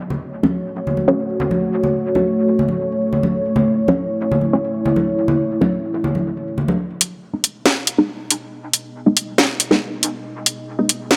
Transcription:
0.00 6.76 A3 medium
0.00 3.31 F#4 medium
0.00 6.76 C#5 medium
0.10 low conga medium
0.43 0.55 F#3 medium
0.43 0.55 A3 medium
0.43 0.55 C#4 medium
0.43 high conga medium
0.87 low conga medium
0.97 high conga medium
1.08 1.20 F#3 medium
1.08 1.20 A3 medium
1.08 1.20 C#4 loud
1.40 low conga medium
1.51 high conga medium
1.84 low conga medium
2.15 2.28 F#3 medium
2.15 2.28 A3 medium
2.15 2.28 C#4 medium
2.15 high conga medium
2.59 low conga medium
2.68 high conga medium
3.13 low conga medium
3.23 high conga medium
3.34 6.76 E4 medium
3.56 low conga medium
3.88 4.00 F#3 medium
3.88 4.00 A3 medium
3.88 4.00 C#4 medium
3.88 high conga medium
4.32 low conga medium
4.41 high conga medium
4.53 4.65 F#3 medium
4.53 4.65 A3 medium
4.53 4.65 C#4 loud
4.85 low conga medium
4.96 high conga medium
5.28 low conga medium
5.61 5.73 F#3 medium
5.61 5.73 A3 medium
5.61 5.73 C#4 medium
5.61 high conga medium
6.04 low conga medium
6.15 high conga medium
6.58 low conga medium
6.68 high conga medium
6.79 11.16 B3 medium
6.79 11.16 G#4 medium
6.79 11.16 D#5 medium
7.01 closed hi-hat medium
7.33 7.45 G#3 medium
7.33 7.45 B3 medium
7.33 7.45 D#4 medium
7.44 closed hi-hat medium
7.66 snare loud
7.87 closed hi-hat medium
7.98 8.10 G#3 loud
7.98 8.10 B3 medium
7.98 8.10 D#4 loud
8.30 closed hi-hat medium
8.73 closed hi-hat medium
9.06 9.18 G#3 medium
9.06 9.18 B3 medium
9.06 9.18 D#4 medium
9.17 closed hi-hat medium
9.38 snare loud
9.60 closed hi-hat medium
9.71 9.83 G#3 loud
9.71 9.83 B3 medium
9.71 9.83 D#4 loud
9.71 snare soft
10.03 closed hi-hat medium
10.46 closed hi-hat medium
10.79 10.91 G#3 medium
10.79 10.91 B3 medium
10.79 10.91 D#4 medium
10.89 closed hi-hat medium
11.11 snare loud

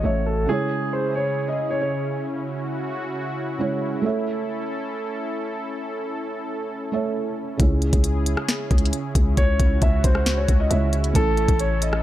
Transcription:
0.00 0.48 A3 medium
0.00 0.44 C#4 medium
0.00 0.47 F#4 medium
0.00 0.45 A4 medium
0.00 0.48 A4 soft
0.04 0.47 A1 loud
0.04 0.24 C#5 medium
0.04 0.49 C#5 soft
0.04 0.49 E5 medium
0.26 0.47 A4 medium
0.46 3.54 C#3 medium
0.46 4.01 C#3 medium
0.46 3.55 G#3 medium
0.46 4.00 C#4 medium
0.46 7.56 E4 medium
0.46 3.56 E4 medium
0.46 2.25 G#4 medium
0.46 0.90 G#4 loud
0.51 3.57 C#5 medium
0.93 1.13 C5 medium
1.15 1.47 C#5 medium
1.48 1.69 D#5 medium
1.71 1.80 C#5 medium
1.81 2.23 C#5 medium
2.26 4.02 F#4 medium
3.58 4.03 C#3 medium
3.58 4.04 G#3 soft
3.58 4.04 E4 medium
3.58 4.03 C#5 medium
4.02 6.88 A3 medium
4.02 12.03 C#4 medium
4.02 6.89 A4 medium
4.02 7.56 A4 medium
4.02 6.89 C#5 medium
4.06 6.90 E5 medium
6.92 7.59 A3 soft
6.92 7.59 A4 soft
6.92 7.60 C#5 medium
6.92 7.60 E5 medium
7.57 7.92 C#2 loud
7.57 10.66 C#3 medium
7.57 11.12 C#3 medium
7.57 10.66 G#3 medium
7.57 12.03 E4 medium
7.57 10.67 E4 medium
7.57 9.36 G#4 medium
7.57 kick loud
7.57 closed hi-hat medium
7.62 10.68 C#4 medium
7.82 closed hi-hat soft
7.93 8.36 C#2 loud
7.93 kick medium
7.93 closed hi-hat medium
8.04 closed hi-hat medium
8.26 closed hi-hat medium
8.37 cross-stick medium
8.49 snare loud
8.49 closed hi-hat medium
8.71 8.92 C#2 loud
8.71 kick loud
8.71 closed hi-hat soft
8.78 closed hi-hat medium
8.86 closed hi-hat medium
8.93 closed hi-hat medium
9.15 9.36 C#2 loud
9.15 kick loud
9.15 closed hi-hat medium
9.37 9.59 C#2 loud
9.37 11.13 F#4 medium
9.37 9.79 C#5 loud
9.37 kick loud
9.37 closed hi-hat medium
9.60 9.81 C#2 loud
9.60 kick loud
9.60 closed hi-hat medium
9.82 10.03 C#2 loud
9.82 10.03 E5 medium
9.82 kick loud
9.82 closed hi-hat medium
10.04 10.47 C#2 loud
10.04 10.35 C5 medium
10.04 kick loud
10.04 closed hi-hat medium
10.15 cross-stick medium
10.26 snare loud
10.26 closed hi-hat medium
10.37 10.58 C#5 medium
10.48 10.70 C#2 loud
10.48 kick loud
10.48 closed hi-hat medium
10.60 10.70 D#5 medium
10.70 11.13 C#2 loud
10.70 11.15 C#3 medium
10.70 11.15 G#3 soft
10.70 11.15 E4 medium
10.70 11.16 C#5 medium
10.70 11.12 E5 medium
10.70 closed hi-hat medium
10.93 closed hi-hat medium
11.04 closed hi-hat soft
11.13 11.47 A1 loud
11.13 12.03 A3 medium
11.13 12.03 C#4 medium
11.13 12.03 A4 medium
11.13 11.57 A4 loud
11.13 kick loud
11.13 closed hi-hat medium
11.17 12.03 E4 medium
11.37 closed hi-hat soft
11.48 12.03 A1 loud
11.48 kick medium
11.48 closed hi-hat medium
11.59 11.80 C#5 medium
11.59 closed hi-hat medium
11.82 12.03 D#5 medium
11.82 closed hi-hat medium
11.93 cross-stick medium

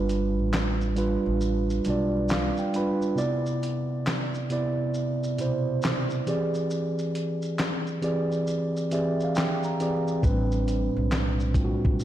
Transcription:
0.00 0.38 G1 medium
0.00 0.82 G3 loud
0.00 0.82 D4 loud
0.00 0.83 F4 medium
0.00 0.83 B4 loud
0.09 closed hi-hat medium
0.09 shaker soft
0.38 1.15 A1 medium
0.53 snare loud
0.53 clap medium
0.53 shaker medium
0.81 shaker soft
0.96 1.75 G3 medium
0.96 1.75 D4 medium
0.96 1.76 F4 medium
0.96 1.76 B4 medium
0.96 closed hi-hat medium
0.96 shaker soft
1.26 1.78 A1 medium
1.41 shaker medium
1.70 shaker soft
1.85 2.49 B1 loud
1.85 2.64 G3 medium
1.85 2.65 D4 medium
1.85 closed hi-hat medium
1.85 shaker soft
1.89 2.65 F4 medium
1.89 2.66 D5 medium
2.29 2.56 F5 medium
2.29 snare loud
2.29 clap loud
2.29 shaker medium
2.57 2.73 G5 medium
2.57 shaker soft
2.74 3.13 G3 medium
2.74 3.14 D4 medium
2.74 3.14 F4 medium
2.74 3.15 B4 medium
2.74 3.16 B5 medium
2.74 closed hi-hat medium
2.74 shaker soft
3.02 shaker soft
3.15 4.34 C3 loud
3.15 4.34 B3 medium
3.15 4.35 E4 medium
3.15 4.35 D5 loud
3.15 shaker medium
3.46 shaker soft
3.63 closed hi-hat medium
3.63 shaker soft
4.06 snare loud
4.06 clap medium
4.06 shaker medium
4.34 shaker soft
4.50 5.28 C3 medium
4.50 5.29 B3 medium
4.50 5.29 E4 medium
4.50 5.30 D5 loud
4.50 closed hi-hat medium
4.50 shaker soft
4.94 shaker medium
5.24 shaker soft
5.38 6.27 B2 medium
5.38 6.27 C3 medium
5.38 6.27 E4 medium
5.38 6.28 C5 medium
5.38 closed hi-hat medium
5.38 shaker medium
5.82 snare loud
5.82 clap loud
5.82 shaker medium
6.10 shaker soft
6.27 7.80 E3 medium
6.27 7.80 C4 medium
6.27 7.81 G4 medium
6.27 7.81 G#4 medium
6.27 7.81 D5 loud
6.27 closed hi-hat medium
6.27 shaker soft
6.54 shaker soft
6.70 shaker medium
6.99 shaker soft
7.15 closed hi-hat medium
7.15 shaker soft
7.42 shaker soft
7.59 snare loud
7.59 clap medium
7.59 shaker medium
7.87 shaker soft
8.02 8.81 E3 medium
8.02 8.81 C4 medium
8.02 8.81 G4 medium
8.02 8.82 G#4 medium
8.02 8.82 D5 medium
8.02 closed hi-hat medium
8.02 shaker soft
8.32 shaker soft
8.47 shaker medium
8.77 shaker soft
8.91 9.69 E3 medium
8.91 9.70 C4 medium
8.91 9.70 G4 medium
8.91 9.71 G#4 medium
8.91 9.71 D5 medium
8.91 9.18 E5 medium
8.91 closed hi-hat medium
8.91 shaker soft
9.20 9.36 F5 medium
9.20 shaker soft
9.35 9.62 G5 medium
9.35 snare loud
9.35 clap medium
9.35 shaker medium
9.63 10.20 A#5 medium
9.63 shaker soft
9.80 10.19 E3 medium
9.80 10.19 C4 medium
9.80 10.20 G4 medium
9.80 10.20 G#4 medium
9.80 10.20 D5 medium
9.80 closed hi-hat medium
9.80 shaker soft
10.08 shaker soft
10.22 10.87 A1 loud
10.22 11.40 A2 loud
10.22 11.41 G3 medium
10.22 11.41 C4 medium
10.22 11.41 D4 medium
10.22 11.42 B4 loud
10.22 kick loud
10.22 shaker medium
10.52 shaker soft
10.68 closed hi-hat medium
10.68 shaker soft
10.97 11.74 B1 loud
11.11 snare loud
11.11 clap medium
11.11 shaker medium
11.40 shaker soft
11.54 12.04 A2 medium
11.54 12.04 G3 medium
11.54 12.04 C4 medium
11.54 12.04 D4 medium
11.54 11.65 F4 medium
11.54 kick medium
11.54 closed hi-hat medium
11.54 shaker soft
11.64 12.04 F#4 loud
11.85 12.04 B1 medium
11.85 kick medium
12.00 shaker medium

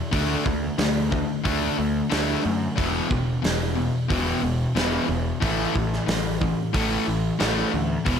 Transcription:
0.11 0.35 D2 medium
0.11 0.43 D3 medium
0.11 0.43 A3 medium
0.11 0.44 D4 loud
0.11 kick loud
0.11 open hi-hat medium
0.45 0.68 D2 medium
0.45 0.75 D3 medium
0.45 0.75 A3 medium
0.45 kick medium
0.78 1.23 D2 medium
0.78 1.08 D3 medium
0.78 1.08 A3 medium
0.78 snare loud
0.78 open hi-hat soft
1.11 1.41 D3 medium
1.11 1.41 A3 medium
1.11 kick medium
1.44 1.68 D2 medium
1.44 1.75 D3 medium
1.44 1.76 A3 loud
1.44 1.76 D4 medium
1.44 kick loud
1.44 open hi-hat medium
1.77 2.01 D2 medium
1.77 2.07 D3 medium
1.77 2.08 A3 medium
2.10 2.34 D2 medium
2.10 2.41 D3 medium
2.10 2.42 A3 medium
2.10 2.42 D4 medium
2.10 snare loud
2.10 open hi-hat medium
2.43 2.67 F#2 medium
2.43 2.73 D3 medium
2.43 2.73 A3 medium
2.76 3.00 E1 loud
2.76 3.07 E2 medium
2.76 3.08 B2 loud
2.76 3.08 E3 loud
2.76 kick loud
2.76 open hi-hat soft
3.09 3.33 E1 medium
3.09 3.39 E2 medium
3.09 3.39 B2 medium
3.09 kick medium
3.42 3.88 E1 medium
3.42 3.72 E2 medium
3.42 3.73 B2 medium
3.42 snare loud
3.42 open hi-hat medium
3.75 4.06 E2 medium
3.75 4.06 B2 medium
4.08 4.33 E1 medium
4.08 4.40 E2 medium
4.08 4.40 B2 loud
4.08 4.41 E3 loud
4.08 kick loud
4.08 open hi-hat medium
4.42 4.65 E1 medium
4.42 4.72 E2 medium
4.42 4.72 B2 medium
4.75 4.98 E1 medium
4.75 5.06 E2 medium
4.75 5.07 B2 medium
4.75 5.07 E3 loud
4.75 snare loud
4.75 open hi-hat medium
5.08 5.31 E1 medium
5.08 5.38 E2 medium
5.08 5.38 B2 medium
5.40 5.64 A1 medium
5.40 5.72 A2 medium
5.40 5.73 E3 loud
5.40 5.73 A3 medium
5.40 kick loud
5.40 open hi-hat medium
5.74 5.98 A1 medium
5.74 6.04 A2 medium
5.74 6.05 E3 medium
5.74 kick medium
5.93 snare soft
6.06 6.53 A1 medium
6.06 6.37 A2 medium
6.06 6.37 E3 medium
6.06 snare loud
6.06 open hi-hat medium
6.41 6.71 A2 medium
6.41 6.71 E3 medium
6.41 kick medium
6.73 6.97 A1 medium
6.73 7.05 A2 medium
6.73 7.05 E3 medium
6.73 7.05 A3 loud
6.73 kick loud
6.73 open hi-hat medium
7.07 7.30 A1 medium
7.07 7.37 A2 medium
7.07 7.37 E3 medium
7.39 7.63 A1 medium
7.39 7.71 A2 medium
7.39 7.71 E3 medium
7.39 7.71 A3 medium
7.39 snare loud
7.39 open hi-hat soft
7.72 7.96 D2 medium
7.72 8.02 A2 medium
7.72 8.02 E3 medium
8.05 8.20 E1 medium
8.05 8.20 E2 medium
8.05 8.20 B2 medium
8.05 8.20 E3 medium
8.05 kick loud
8.05 open hi-hat medium

